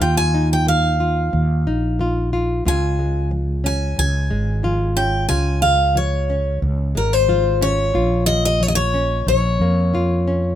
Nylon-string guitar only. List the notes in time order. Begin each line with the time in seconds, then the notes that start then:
0.01 D#3 F4
0.34 D#4
0.67 A#3
1.00 F4
1.33 A#2
1.67 D#4
1.99 A#3 F4
2.33 F4
2.65 C#3 F4
2.99 G#3
3.31 F3
3.64 C#4
3.97 G#2
4.31 G#3
4.63 F3 F4
4.97 C#4
5.29 C#3 F4
5.63 G#3
5.96 F3
6.30 C#4
6.62 G#2
6.95 G#3
7.28 F3 F4
7.61 C#4
7.94 A#2 F4
8.28 A#3
8.61 F3
8.94 C#4
9.27 F2
9.61 A#3
9.94 F3 F4
10.28 C#4